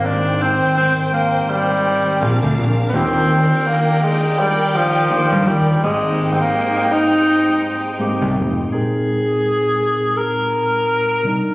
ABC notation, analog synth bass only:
X:1
M:4/4
L:1/16
Q:"Swing 16ths" 1/4=83
K:Bbmix
V:1 name="Analog synth bass" clef=bass
A,,,4 z8 B,,, D,, B,,,2 | E,,4 z8 z G,, E,,2 | A,,,4 z8 z C,, F,,,2 | z16 |]